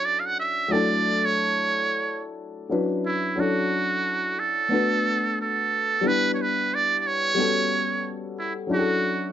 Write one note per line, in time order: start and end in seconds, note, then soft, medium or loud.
0.00 0.65 F#3 medium
0.00 0.66 C#4 medium
0.00 0.66 D4 medium
0.00 0.67 E4 medium
0.00 0.68 A4 medium
0.05 0.21 D5 loud
0.20 0.27 F5 medium
0.26 0.38 F#5 medium
0.40 0.74 E5 loud
0.68 2.65 F#3 medium
0.68 2.66 A3 medium
0.68 2.67 D4 medium
0.68 2.67 E4 medium
0.68 1.27 D5 loud
0.73 2.68 A4 medium
1.25 2.25 C#5 loud
2.69 3.34 F#3 medium
2.69 3.36 C#4 soft
2.69 3.36 D4 medium
2.69 3.37 E4 medium
2.69 3.38 B4 medium
3.06 3.41 E4 medium
3.36 4.67 F#3 medium
3.36 4.68 C#4 medium
3.36 4.68 D4 medium
3.36 4.69 E4 medium
3.40 4.41 F#4 medium
3.40 4.70 A4 medium
4.39 5.38 A4 loud
4.69 6.00 A3 medium
4.69 6.00 B3 medium
4.69 6.01 D4 medium
4.69 6.02 F#4 medium
4.74 6.03 B4 medium
5.41 6.09 A4 medium
6.01 7.33 G3 medium
6.01 7.34 B3 medium
6.01 7.34 D4 medium
6.01 7.35 E4 medium
6.06 7.36 B4 medium
6.06 6.34 B4 loud
6.34 6.43 C#5 medium
6.42 6.76 B4 loud
6.75 6.99 D5 loud
6.99 7.08 D5 medium
7.07 8.13 C#5 loud
7.35 8.66 G3 medium
7.35 8.67 B3 medium
7.35 8.67 C#4 medium
7.39 8.69 F#4 medium
7.39 8.69 A4 medium
8.39 8.53 E4 medium
8.67 9.32 F#3 medium
8.67 9.32 C#4 medium
8.67 9.32 D4 medium
8.67 9.32 E4 medium
8.73 9.32 F#4 loud
8.73 8.80 G#4 medium
8.79 9.32 A4 medium